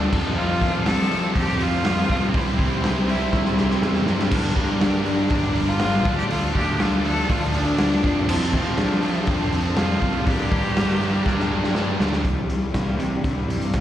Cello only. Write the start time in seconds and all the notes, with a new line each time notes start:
0.36 F4
0.86 A4
1.37 G4
1.62 F4
2.30 A#3
2.38 C4
3.10 E4
4.81 D4
5.06 D4
5.68 F4
6.18 G4
6.30 F4
6.54 G4
6.81 F4
7.06 A4
7.31 F4
7.55 D4
8.29 C4
8.78 D4
9.14 E4
9.25 D4
9.66 D4
9.77 F4
10.27 G4
12.76 A#3
13.02 G3
13.14 D3
13.39 G3
13.65 A#3